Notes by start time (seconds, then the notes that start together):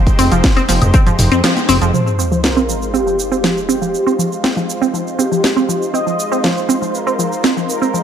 Already playing: G#3 D#4 G4 C5
0.07 kick, closed hi-hat, cabasa
0.19 F1 C4, open hi-hat, cabasa
0.32 F1 F3, closed hi-hat, cabasa
0.44 kick, snare, closed hi-hat, cabasa
0.57 C4, closed hi-hat, cabasa, high woodblock
0.69 F1 F3, open hi-hat, high conga, cabasa
0.82 F1, closed hi-hat, mid tom, cabasa, high woodblock
0.94 C4, kick, closed hi-hat, cabasa
1.07 F3, closed hi-hat, mid tom, cabasa
1.19 F1, mid tom, open hi-hat, cabasa
1.32 F2 C4, closed hi-hat, cabasa
1.44 F3, snare, closed hi-hat, cabasa
1.57 closed hi-hat, high conga, cabasa
1.69 F1 C4, open hi-hat, cabasa
1.82 F1 F3, closed hi-hat, cabasa
1.94 F3 G#3 D#4 F4 C5, sub drop, cabasa
2.07 cabasa
2.19 C4, cabasa
2.32 F3, cabasa
2.44 A#4, snare, cabasa
2.57 C4, cabasa
2.69 F3, cabasa
2.82 cabasa
2.94 C4 G4, cabasa
3.07 F3, cabasa
3.19 cabasa
3.32 C4, cabasa
3.44 F3, snare, cabasa
3.57 cabasa
3.69 C4 G4, cabasa
3.82 F3, cabasa
3.95 cabasa
4.07 C4, cabasa
4.19 F3, cabasa
4.32 cabasa
4.44 C4, snare, cabasa
4.57 F3, cabasa
4.70 cabasa
4.82 C4, cabasa
4.94 F3, cabasa
5.07 cabasa
5.19 C4 G4, cabasa
5.32 F3, cabasa
5.44 snare, cabasa
5.57 C4, cabasa
5.69 F3, cabasa
5.82 cabasa
5.94 C4 D#5, cabasa
6.07 F3, cabasa
6.20 cabasa
6.32 C4, cabasa
6.44 F3 C5, snare, cabasa
6.57 cabasa
6.69 C4, cabasa
6.82 F3, cabasa
6.94 A#4, cabasa
7.07 C4, cabasa
7.19 F3, cabasa
7.32 cabasa
7.44 C4, snare, cabasa
7.57 F3, cabasa
7.69 A#4, cabasa
7.82 C4, cabasa
7.94 F3, cabasa